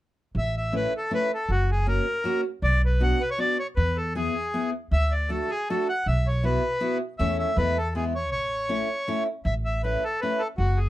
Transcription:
0.35 A1 E5
0.57 E5
0.72 A3 C#4 E4 B4
0.97 A4
1.11 A3 C#4 E4 B4
1.34 A4
1.49 F#1 F#4
1.71 G#4
1.86 A#3 C#4 F#4 A#4
2.24 A#3 C#4 F#4
2.62 B1 D5
2.85 B4
3.00 B3 D4 F#4 F#5
3.21 B4
3.31 C#5
3.38 B3 D4 F#4 D5
3.59 C#5
3.76 E2 B4
3.97 A4
4.15 B3 E4 G#4
4.54 B3 E4 G#4
4.91 D2 E5
5.11 D5
5.29 A3 D4 F#4 A4
5.50 G#4
5.69 A3 D4 F#4 A4
5.89 F#5
6.06 B1 E5
6.27 C#5
6.43 B3 E4 F#4 B4
6.80 B3 E4 F#4
7.19 E2 A3 C#4 E4 E5
7.39 E5
7.56 E2 G#3 B3 E4 B4
7.78 A4
7.95 G#3 B3 E4 G#4
8.16 C#5
8.32 A1 C#5
8.69 A3 C#4 E4
9.08 A3 C#4 E4
9.45 A1 E5
9.65 E5
9.83 A3 C#4 E4 B4
10.04 A4
10.21 A3 C#4 E4 B4
10.39 A4
10.58 F#1 F#4
10.77 G#4

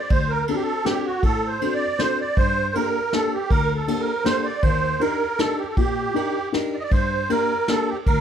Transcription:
Already playing: D5
0.10 D2 C5, kick, ride
0.30 A#4
0.48 C4 D4 F#4 A4, ride
0.56 G4
0.62 A4
0.85 C4 D4 F#4 G4 A4, snare, ride
1.05 F#4
1.23 A2 A4, kick, ride
1.48 C5
1.61 C4 D4 F#4 A4, ride
1.74 D5
1.98 C4 D4 F#4 A4 C5, snare, ride
2.20 D5
2.37 G2 C5, kick, ride
2.74 A#3 D4 G4 A4 A#4, ride
3.12 A#3 D4 G4 A4, snare, ride
3.34 G4
3.50 D2 A#4, kick, ride
3.76 A4
3.88 A#3 D4 G4 A4, ride
4.00 A#4
4.24 A#3 D4 G4 A4 C5, snare, ride
4.45 D5
4.62 D#2 C5, kick, ride
5.00 D4 D#4 G4 A#4, ride
5.38 D4 D#4 G4 A4 A#4, snare, ride
5.59 G4
5.68 A4
5.76 A#2 G4, kick, ride
6.14 D4 D#4 G4 A#4, ride
6.52 D4 D#4 G4 A#4, snare, ride
6.74 D5
6.80 D#5
6.84 D5
6.91 G2 C5, kick, ride
7.29 A#3 D4 G4 A#4, ride
7.68 A#3 D4 G4 A4 A#4, snare, ride
7.89 G4
8.07 D2 A#4, kick, ride

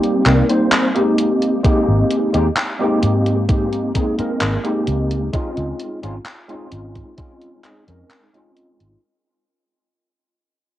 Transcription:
Already playing: G3 A#3 C4 D#4 G4
0.03 closed hi-hat
0.25 C2 G3 A#3 C4 D#4 A#4, clap, closed hi-hat
0.48 G3 A#3 C4 D#4 C5, closed hi-hat
0.72 clap, closed hi-hat
0.95 G#3 A#3 C4 D#4 G4, closed hi-hat
1.18 closed hi-hat
1.42 closed hi-hat
1.63 G#3 A#3 C4 D#4 G4, muted fingered electric bass stroke, kick, closed hi-hat
1.88 G#1
2.11 closed hi-hat
2.33 D#2 G#3 A#3 C4 D#4 G4, closed hi-hat
2.57 clap, closed hi-hat
2.79 G#3 A#3 C4 D#4 G4
3.03 G#2, closed hi-hat
3.26 closed hi-hat
3.48 G#3 A#3 C4 D#4 G4, kick, closed hi-hat
3.73 closed hi-hat
3.94 D#2 G#3 A#3 C4 D#4 G#4, kick, closed hi-hat
4.18 G#3 A#3 C4 D#4 A#4, muted fingered electric bass stroke, closed hi-hat
4.41 G#1, clap, closed hi-hat
4.64 G#3 A#3 C4 D#4 G4, closed hi-hat
4.87 C#2, closed hi-hat
5.11 closed hi-hat
5.33 G#3 C4 C#4 D#4 F4, kick, closed hi-hat
5.57 C#2, closed hi-hat
5.79 closed hi-hat
6.03 G#1 G#3 C4 C#4 D#4 F4, closed hi-hat
6.26 clap, closed hi-hat
6.48 G#3 C4 C#4 D#4 F4, closed hi-hat
6.72 G#1, closed hi-hat
6.95 kick, closed hi-hat
7.17 G#3 C4 C#4 D#4 F4, kick, closed hi-hat
7.42 closed hi-hat
7.63 G#3 C4 C#4 D#4 G#4, clap, closed hi-hat
7.87 F2 G#3 C4 C#4 D#4 A#4, closed hi-hat
8.10 clap, closed hi-hat
8.33 G#3 C4 C#4 D#4 F4, closed hi-hat
8.57 closed hi-hat
8.80 G#1, closed hi-hat

